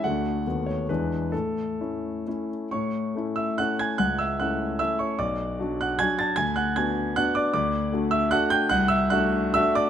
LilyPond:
\new Staff \with { instrumentName = "Grand piano" } { \time 3/4 \key a \major \tempo 4 = 148 << { fis''4. cis''8 b'4 | a'2~ a'8 r8 | <cis'' cis'''>4. <e'' e'''>8 <fis'' fis'''>8 <gis'' gis'''>8 | <fis'' fis'''>8 <e'' e'''>8 <fis'' fis'''>4 <e'' e'''>8 <cis'' cis'''>8 |
<d'' d'''>4. <fis'' fis'''>8 <gis'' gis'''>8 <a'' a'''>8 | <gis'' gis'''>8 <fis'' fis'''>8 <gis'' gis'''>4 <fis'' fis'''>8 <d'' d'''>8 | \key d \major <d'' d'''>4. <e'' e'''>8 <fis'' fis'''>8 <g'' g'''>8 | <fis'' fis'''>8 <e'' e'''>8 <fis'' fis'''>4 <e'' e'''>8 <d'' d'''>8 | } \\ { <d, a d' fis'>4 <dis, a b fis'>4 <e, gis d' e'>4 | a,4 <a cis' e'>4 <a cis' e'>4 | a,4 <a cis' e'>4 <a cis' e'>4 | cis,4 <a cis' e'>4 <a cis' e'>4 |
b,,4 <fis d' fis'>4 <fis d' fis'>4 | d,4 <b d' fis'>4 <b d' fis'>4 | d,4 <a d' fis'>4 <a d' fis'>4 | c,4 <a d' fis'>4 <a d' fis'>4 | } >> }